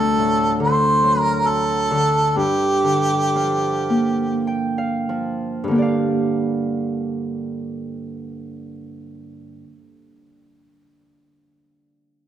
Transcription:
Already playing: D2 A3 A4
0.19 A2
0.60 D3 C5
1.03 F#3
1.20 A#4
1.46 A4
1.91 D3
2.36 G2 G4
2.84 D3
3.36 F3
3.90 A#3
4.47 G5
4.78 F5
5.09 F3
5.64 G2
5.68 D3 A#3
5.75 G4 D5
5.82 F5

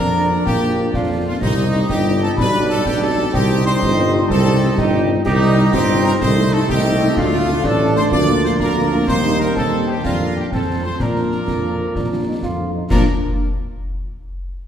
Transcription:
Already playing: F3 D4 F4 A#4 D5 A#5
0.00 F2
0.14 A#3 D4 F4
0.29 A#3 D4 F4
0.45 A#1 A#3 G4 G5, concert bass drum, snare
0.62 A#3 D4 F4
0.78 A#3 D4 F4
0.94 F2 D4 F4 F5, concert bass drum, snare
1.10 A#3 D4 F4
1.25 A#3 D4 F4 F5
1.40 C2 G3 C4 D#4 G4 D#5, concert bass drum, snare, crash
1.58 G3 C4 D#4, snare
1.73 G3 C4 D#4, snare
1.89 G1 D#4 G4 G5, concert bass drum, snare
2.06 G3 C4 D#4
2.21 G3 C4 D#4 A4 A5
2.36 B1 D4 B4 D5 B5, concert bass drum, snare
2.53 G3 D4
2.68 G3 D4 A4 A5
2.85 B1 G4 G5, concert bass drum, snare
3.00 G3 D4 A4 A5
3.17 G3 D4
3.32 C2 G3 C4 D#4 G4 D#5 G5, concert bass drum, snare, crash
3.49 G3 C4 D#4, snare
3.64 G3 C4 D#4 C5 C6, snare
3.80 G1 D#4, concert bass drum, snare
3.97 G3 C4 D#4
4.13 G3 C4 D#4
4.29 C2 C4 A4 A5, concert bass drum, snare
4.45 G3 C4 D#4
4.62 G3 C4 D#4
4.77 G1 D#4 G4 G5, concert bass drum, snare
4.93 G3 C4 D#4
5.09 G3 C4 D#4
5.25 C2 G3 D#4 G4 D#5, concert bass drum, snare, crash
5.41 G3 C4 D#4, snare
5.56 G3 C4 D#4, snare
5.72 G1 C4 G4 G5, concert bass drum, snare
5.88 G3 C4 D#4
6.04 G3 C4 D#4 A#4 A#5
6.20 C2 A3 A4 C5 C6, concert bass drum, snare
6.37 A3 D#4
6.52 A3 D#4 A4 A5
6.68 C2 D#4 G4 G5, concert bass drum, snare
6.85 A3 D#4
7.01 A3 D#4
7.15 D2 D4 F4 D5 F5, concert bass drum, snare, crash
7.33 A3 D4 F4, snare
7.48 A3 D4 F4, snare
7.64 A1 D4 A4 A5, concert bass drum, snare
7.80 A3 D4 F4
7.96 A3 D4 F4 C5 C6
8.10 D2 F3 A#3 F4 D5 D6, concert bass drum, snare
8.27 A#3 D4 F4
8.44 A#3 D4 F4 C5 C6
8.60 D2 A#4 A#5, concert bass drum, snare
8.75 A#3 D4 F4
8.92 A#3 D4 F4
9.06 D#2 G3 D#4 C5 C6, concert bass drum, snare, crash
9.24 G3 C4 D#4, snare
9.39 G3 C4 D#4 A#4 A#5, snare
9.54 D#2 C4 A4 A5, concert bass drum, snare
9.72 G3 C4 D#4
9.87 G3 C4 D#4 G4 G5
10.03 F2 A#3 D4 F4 A#4 F5, concert bass drum, snare
10.20 F3 A#3 D4
10.36 F3 A#3 D4 G4 G5
10.51 F2 F3 C4 F4 A4 C5 A5, concert bass drum, snare
10.68 F3 C4 F4
10.84 F3 C4 F4 C5 C6
10.98 A#2 F3 D4 F4 A#4 D5 A#5, concert bass drum, snare, crash
11.16 F3 D4 F4, snare
11.32 F3 D4 F4, snare
11.47 F2 A#3, concert bass drum, snare
11.64 F3 D4 F4
11.80 F3 D4 F4
11.95 A#2 D4, concert bass drum, snare
12.11 F3 D4 F4
12.26 F3 D4 D#4 F4
12.43 F2 F4, concert bass drum, snare
12.58 F3 D4 F4
12.75 F3 D4 D#4 F4
12.90 A#2 F3 D4 F4 A#4 D5 A#5, concert bass drum, snare, crash

